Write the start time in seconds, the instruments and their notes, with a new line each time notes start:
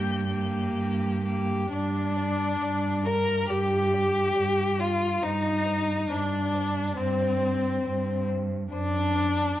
Already playing: cello G2, viola A#3, violin G4 G6
0.28 viola A#3, violin G4
0.75 cello G2
1.24 viola A#3, violin G4
1.71 cello G2, viola D4, violin D4 D5
2.16 violin D5
2.61 cello G2, violin D5
3.06 viola A#4, violin A#4 D5
3.49 cello G2, violin G4 D5, viola G4
3.93 violin D5
4.35 cello G2, violin D5
4.78 viola F4, violin F4 D5
5.22 cello G2, viola D#4, violin D#4 C5
5.65 violin C5
6.09 cello G2, viola D4, violin D4 C5
6.53 violin C5
6.97 cello G2, viola C4, violin C4 C5
7.40 violin C5
7.83 cello G2, violin C5
8.28 violin C5
8.72 cello F#2, viola D4, violin D4 C5
9.14 violin C5